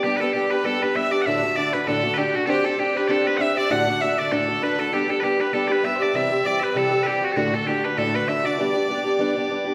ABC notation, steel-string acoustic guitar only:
X:1
M:4/4
L:1/8
Q:"Swing" 1/4=197
K:G
V:1 name="Steel-string acoustic guitar"
[G,B,DG] [B,DG] [G,B,DG] [B,DG] [G,B,DG] [B,DG] [G,B,DG] [B,DG] | [D,,A,,D,A,DF] [D,A,DF] [D,A,DF] [D,A,DF] [D,,A,,D,A,DF] [D,A,DF] [D,A,DF] [D,A,DF] | [CDGc] [DGc] [CDGc] [DGc] [CDGc] [DGc] [CDGc] [DGc] | [D,,A,,D,A,DF] [D,A,DF] [D,A,DF] [D,A,DF] [D,,A,,D,A,DF] [D,A,DF] [D,A,DF] [D,A,DF] |
[G,B,DG] [B,DG] [G,B,DG] [B,DG] [G,B,DG] [B,DG] [G,B,DG] [B,DG] | [C,E,G,CG] [G,CG] [E,G,CG] [G,CG] [C,E,G,CG] [G,CG] [E,G,CG] [G,CG] | [D,,A,,D,A,DF] [D,A,DF] [D,A,DF] [D,A,DF] [D,,A,,D,A,DF] [D,A,DF] [D,A,DF] [D,A,DF] | [G,B,DG] [B,DG] [G,B,DG] [B,DG] [G,B,DG] [B,DG] [G,B,DG] [B,DG] |]